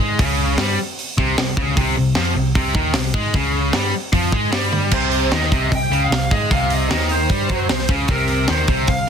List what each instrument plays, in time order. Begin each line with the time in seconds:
0.00 picked electric bass G#2, overdriven electric guitar G#3
0.19 picked electric bass C#2, overdriven electric guitar C#3, kick, open hi-hat
0.57 picked electric bass G2, overdriven electric guitar G3, snare, open hi-hat
0.99 open hi-hat
1.17 picked electric bass C2, overdriven electric guitar C3, kick
1.38 picked electric bass C2, overdriven electric guitar C3, snare, open hi-hat
1.57 picked electric bass C#2, overdriven electric guitar C#3, kick
1.77 picked electric bass C2, overdriven electric guitar C3, kick, open hi-hat
1.97 picked electric bass C2, overdriven electric guitar C3
2.15 picked electric bass F2, overdriven electric guitar F3, snare, open hi-hat
2.36 picked electric bass C2, overdriven electric guitar C3
2.55 picked electric bass C2, overdriven electric guitar C3, kick, open hi-hat
2.74 picked electric bass D#2, overdriven electric guitar D#3, kick
2.93 picked electric bass C2, overdriven electric guitar C3, snare, open hi-hat
3.14 picked electric bass G#2, overdriven electric guitar G#3, kick
3.34 picked electric bass C#2, overdriven electric guitar C#3, kick, open hi-hat
3.73 picked electric bass G2, overdriven electric guitar G3, snare, open hi-hat
4.12 picked electric bass F2, overdriven electric guitar F3, kick, open hi-hat
4.32 picked electric bass G#2, overdriven electric guitar G#3, kick
4.52 picked electric bass G2, overdriven electric guitar G3, snare, open hi-hat
4.73 high tom
4.91 picked electric bass C2, overdriven electric guitar C3, lead electric guitar C5, kick, crash
5.11 open hi-hat
5.31 picked electric bass D#2, overdriven electric guitar D#3, lead electric guitar D#5, snare, open hi-hat
5.43 snare
5.52 picked electric bass C2, overdriven electric guitar C3, kick, open hi-hat
5.71 picked electric bass C2, overdriven electric guitar C3, lead electric guitar G5, kick, open hi-hat
5.90 picked electric bass C#2, overdriven electric guitar C#3, open hi-hat
6.04 lead electric guitar F5
6.10 picked electric bass C2, overdriven electric guitar C3, snare, open hi-hat
6.31 picked electric bass G#2, overdriven electric guitar G#3, lead electric guitar D#5, kick, open hi-hat
6.51 picked electric bass C2, overdriven electric guitar C3, lead electric guitar F5, kick, open hi-hat
6.70 lead electric guitar D#5, open hi-hat
6.90 picked electric bass D#2, overdriven electric guitar D#3, lead electric guitar D#5, snare, open hi-hat
7.01 snare
7.09 lead electric guitar C5, open hi-hat
7.29 picked electric bass G2, overdriven electric guitar G3, kick, open hi-hat
7.49 picked electric bass F#2, overdriven electric guitar F#3, kick, open hi-hat
7.69 picked electric bass C2, overdriven electric guitar C3, snare, open hi-hat
7.79 snare
7.88 picked electric bass C#2, overdriven electric guitar C#3, kick, open hi-hat
8.08 picked electric bass C2, overdriven electric guitar C3, lead electric guitar A#4, kick, open hi-hat
8.28 open hi-hat
8.48 picked electric bass D#2, overdriven electric guitar D#3, lead electric guitar C5, snare, open hi-hat
8.67 picked electric bass C2, overdriven electric guitar C3, kick, open hi-hat
8.87 picked electric bass C2, overdriven electric guitar C3, lead electric guitar F5, kick, open hi-hat